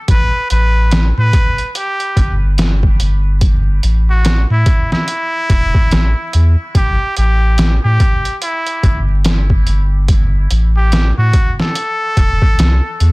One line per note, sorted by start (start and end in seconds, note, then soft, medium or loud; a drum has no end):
0.08 0.30 A1 medium
0.08 0.47 B4 loud
0.08 kick loud
0.08 closed hi-hat medium
0.50 1.12 A1 medium
0.50 1.09 B4 medium
0.50 closed hi-hat medium
0.91 snare loud
0.91 closed hi-hat medium
1.17 1.32 A2 medium
1.17 1.71 B4 loud
1.33 kick medium
1.33 closed hi-hat medium
1.58 closed hi-hat soft
1.75 2.35 G4 medium
1.75 closed hi-hat medium
2.00 closed hi-hat soft
2.17 2.97 G1 loud
2.17 kick medium
2.17 closed hi-hat medium
2.58 snare loud
2.58 closed hi-hat medium
2.83 kick medium
3.00 3.80 G1 medium
3.00 closed hi-hat medium
3.41 kick loud
3.41 closed hi-hat medium
3.83 4.45 A1 medium
3.83 closed hi-hat medium
4.10 4.46 F#4 medium
4.25 snare loud
4.25 closed hi-hat medium
4.50 4.65 A2 medium
4.50 4.87 E4 medium
4.66 kick medium
4.66 closed hi-hat medium
4.92 6.62 E4 loud
4.92 snare soft
5.08 closed hi-hat medium
5.50 5.72 E1 loud
5.50 kick medium
5.50 closed hi-hat medium
5.74 kick medium
5.91 6.14 A1 loud
5.91 snare loud
5.91 closed hi-hat medium
6.33 6.56 E2 medium
6.33 closed hi-hat medium
6.75 6.97 A1 medium
6.75 7.14 G4 medium
6.75 kick loud
6.75 closed hi-hat medium
7.17 7.79 A1 medium
7.17 7.76 G4 medium
7.17 closed hi-hat medium
7.58 snare loud
7.58 closed hi-hat medium
7.84 7.99 A2 medium
7.84 8.37 G4 medium
8.00 kick medium
8.00 closed hi-hat medium
8.25 closed hi-hat soft
8.42 9.01 E4 medium
8.42 closed hi-hat medium
8.67 closed hi-hat soft
8.83 9.64 G1 medium
8.83 kick medium
8.83 closed hi-hat medium
9.25 snare loud
9.25 closed hi-hat medium
9.50 kick medium
9.67 10.47 G1 medium
9.67 closed hi-hat medium
10.08 kick loud
10.08 closed hi-hat medium
10.51 11.12 A1 medium
10.51 closed hi-hat medium
10.77 11.12 G4 medium
10.92 snare loud
10.92 closed hi-hat medium
11.18 11.32 A2 medium
11.18 11.54 F#4 medium
11.33 kick medium
11.33 closed hi-hat medium
11.60 13.12 A4 loud
11.60 snare medium
11.75 closed hi-hat medium
12.17 12.39 E1 loud
12.17 kick medium
12.17 closed hi-hat medium
12.42 kick medium
12.59 12.80 C2 medium
12.59 snare loud
12.59 closed hi-hat medium
13.00 13.12 E2 loud
13.00 closed hi-hat medium